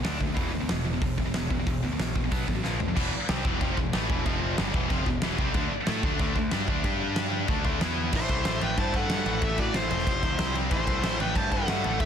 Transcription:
0.04 picked electric bass D2, distorted electric guitar D3 A3 D4, snare, open hi-hat
0.18 picked electric bass D2, distorted electric guitar D3 A3, kick
0.28 distorted electric guitar D3 A3
0.35 picked electric bass E1, distorted electric guitar E2 B2 E3, kick, open hi-hat
0.52 picked electric bass D2, distorted electric guitar E2 B2
0.60 distorted electric guitar E2 B2
0.69 picked electric bass E1, distorted electric guitar E2 B2, snare, open hi-hat
0.85 distorted electric guitar E2 B2
0.93 distorted electric guitar E2 B2
1.02 picked electric bass E1, distorted electric guitar E2 B2, kick, open hi-hat
1.18 picked electric bass E1, distorted electric guitar E2 B2, kick
1.26 distorted electric guitar E2 B2
1.34 picked electric bass E1, distorted electric guitar E2 B2, snare, open hi-hat
1.50 picked electric bass E1, distorted electric guitar E2 B2, kick
1.59 distorted electric guitar E2 B2
1.67 picked electric bass E1, distorted electric guitar E2 B2, kick, open hi-hat
1.83 picked electric bass D2, distorted electric guitar E2 B2
1.92 distorted electric guitar E2 B2
2.00 picked electric bass A#1, distorted electric guitar E2 B2, snare, open hi-hat
2.16 distorted electric guitar E2 B2, kick
2.24 distorted electric guitar E2 B2
2.31 picked electric bass B1, distorted electric guitar B2 F#3 B3, kick, open hi-hat
2.47 picked electric bass A1, distorted electric guitar B2 F#3, kick
2.55 distorted electric guitar B2 F#3
2.64 picked electric bass A#1, distorted electric guitar A#2 F3 A#3, snare
2.80 picked electric bass F2, distorted electric guitar A#2 F3, floor tom
2.88 distorted electric guitar A#2 F3
2.96 picked electric bass E1, distorted electric guitar E2 B2 E3, kick, crash
3.13 muted picked electric bass stroke, muted distorted electric guitar stroke
3.29 picked electric bass C2, distorted electric guitar C3 G3 C4, snare, crash
3.45 picked electric bass E1, distorted electric guitar E2 B2 E3, kick
3.61 picked electric bass F1, distorted electric guitar F2 C3 F3, kick, crash
3.77 picked electric bass E1, distorted electric guitar E2 B2, kick
3.93 picked electric bass A1, distorted electric guitar A2 E3 A3, snare, crash
4.10 picked electric bass E1, distorted electric guitar E2 B2 E3, kick
4.25 picked electric bass F1, distorted electric guitar F2 C3 F3, kick, crash
4.57 picked electric bass G1, distorted electric guitar G2 D3 G3, snare, crash
4.74 picked electric bass E1, distorted electric guitar E2 B2 E3, kick
4.90 picked electric bass F1, distorted electric guitar F2 C3 F3, kick, crash
5.06 picked electric bass E1, distorted electric guitar E2 B2, kick
5.22 picked electric bass E1, distorted electric guitar E2 B2 E3, snare, crash
5.38 picked electric bass C2, distorted electric guitar C3 G3 C4, kick
5.54 picked electric bass D2, distorted electric guitar D3 A3 D4, kick, crash
5.72 muted distorted electric guitar stroke
5.87 picked electric bass A2, distorted electric guitar A3 E4 A4, snare, crash
6.03 picked electric bass D2, distorted electric guitar D3 A3 D4, kick
6.19 picked electric bass D2, distorted electric guitar D3 A3 D4, kick, crash
6.35 picked electric bass D2, distorted electric guitar D3 A3, kick
6.51 picked electric bass G2, distorted electric guitar G3 D4 G4, snare, crash
6.68 picked electric bass D2, distorted electric guitar D3 A3 D4, kick
6.84 picked electric bass G2, distorted electric guitar G3 D4 G4, kick, crash
7.16 snare, crash
7.48 picked electric bass D2, distorted electric guitar D3 A3 D4, kick, crash
7.65 picked electric bass D2, distorted electric guitar D3 A3 D4, kick
7.81 picked electric bass E2, distorted electric guitar E3 B3 E4, snare, crash
8.13 picked electric bass A1, distorted electric guitar A2 E3 A3, lead electric guitar E4 C5, kick, crash
8.29 picked electric bass C2, distorted electric guitar A2 E3 A3, kick, crash
8.45 picked electric bass A1, distorted electric guitar A2 E3 A3, snare, crash
8.61 picked electric bass A1, distorted electric guitar A2 E3 A3, lead electric guitar B4 G5, crash
8.78 picked electric bass G2, distorted electric guitar A2 E3 A3, lead electric guitar C5 A5, kick, crash
8.94 distorted electric guitar A2 E3 A3, lead electric guitar A4 F#5, kick, crash
9.10 picked electric bass G2, distorted electric guitar A2 E3 A3, snare, crash
9.26 picked electric bass A1, distorted electric guitar A2 E3 A3, crash
9.42 picked electric bass A1, distorted electric guitar A2 E3 A3, lead electric guitar A4 E5, kick, crash
9.58 picked electric bass A2, distorted electric guitar A2 E3 A3, lead electric guitar F#4 D5, kick, crash
9.74 picked electric bass A1, distorted electric guitar A2 E3 A3, lead electric guitar E4 C5, snare, crash
9.90 picked electric bass E1, distorted electric guitar A2 E3 A3, crash
9.99 snare
10.07 picked electric bass F1, distorted electric guitar F2 C3 F3, kick, crash
10.23 picked electric bass D2, distorted electric guitar F2 C3 F3, kick, crash
10.39 picked electric bass C2, distorted electric guitar C3 G3 C4, snare, crash
10.54 distorted electric guitar C3 G3 C4, crash
10.71 picked electric bass A1, distorted electric guitar A2 E3 A3, lead electric guitar E4 C5, kick, crash
10.86 picked electric bass C2, distorted electric guitar A2 E3 A3, kick, crash
11.02 picked electric bass A1, distorted electric guitar A2 E3 A3, snare, crash
11.20 picked electric bass A1, distorted electric guitar A2 E3 A3, lead electric guitar B4 G5, crash
11.35 picked electric bass G2, distorted electric guitar A2 E3 A3, lead electric guitar C5 A5, kick, crash
11.51 distorted electric guitar A2 E3 A3, lead electric guitar A4 F#5, kick, crash
11.68 picked electric bass G2, distorted electric guitar A2 E3 A3, snare, crash
11.84 picked electric bass A1, distorted electric guitar A2 E3 A3, crash
11.99 picked electric bass A1, distorted electric guitar A2 E3 A3, lead electric guitar A4 E5, kick, crash

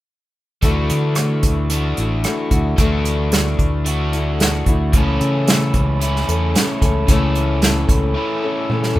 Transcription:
0.62 fingered electric bass D2, overdriven electric guitar D3 A3 D4 F#4, steel-string acoustic guitar D3 E3 A3 E4 F#4, kick, closed hi-hat
0.90 fingered electric bass D3, closed hi-hat
1.15 steel-string acoustic guitar E3 A3 E4 F#4, cross-stick, closed hi-hat
1.43 fingered electric bass D2, kick, closed hi-hat
1.70 overdriven electric guitar D3 A3 D4 F#4, closed hi-hat
1.97 fingered electric bass A1, steel-string acoustic guitar A3 E4 F#4, closed hi-hat
2.23 steel-string acoustic guitar E3 A3 E4 F#4, cross-stick, closed hi-hat
2.51 fingered electric bass D2, steel-string acoustic guitar A3 E4 F#4, kick, closed hi-hat
2.76 fingered electric bass D2, overdriven electric guitar D3 A3 D4 F#4, steel-string acoustic guitar D3 E3 A3 E4 F#4, kick, closed hi-hat
3.05 closed hi-hat
3.31 steel-string acoustic guitar E3 A3 E4 F#4, snare, closed hi-hat
3.59 fingered electric bass D2, kick, closed hi-hat
3.84 overdriven electric guitar D3 A3 D4 F#4, closed hi-hat
4.12 steel-string acoustic guitar A3 E4 F#4, closed hi-hat
4.39 steel-string acoustic guitar E3 A3 E4 F#4, snare, closed hi-hat
4.66 fingered electric bass D2, steel-string acoustic guitar A3 E4 F#4, kick, closed hi-hat
4.93 fingered electric bass C#2, overdriven electric guitar C#3 E3 A3 C#4 E4, steel-string acoustic guitar C#3 E3 A3 C#4 A4, kick, closed hi-hat
5.20 fingered electric bass C#3, closed hi-hat
5.47 steel-string acoustic guitar E3 A3 C#4 A4, snare, closed hi-hat
5.74 fingered electric bass C#2, kick, closed hi-hat
6.00 overdriven electric guitar C#3 E3 A3 C#4 E4, closed hi-hat
6.16 snare
6.28 fingered electric bass E2, steel-string acoustic guitar A3 C#4 A4, closed hi-hat
6.54 steel-string acoustic guitar E3 A3 C#4 A4, snare, closed hi-hat
6.81 fingered electric bass C#2, steel-string acoustic guitar A3 C#4 A4, kick, closed hi-hat
7.07 fingered electric bass C#2, overdriven electric guitar C#3 E3 A3 C#4 E4, steel-string acoustic guitar C#3 E3 A3 C#4 A4, kick, closed hi-hat
7.35 closed hi-hat
7.62 steel-string acoustic guitar E3 A3 C#4, snare, closed hi-hat
7.66 steel-string acoustic guitar A4
7.89 fingered electric bass C#2, kick, closed hi-hat
8.14 overdriven electric guitar C#3 E3 A3 C#4 E4
8.43 steel-string acoustic guitar A3 C#4 A4
8.69 steel-string acoustic guitar E3 A3 C#4 A4, high tom
8.83 snare
8.95 steel-string acoustic guitar A4, mid tom

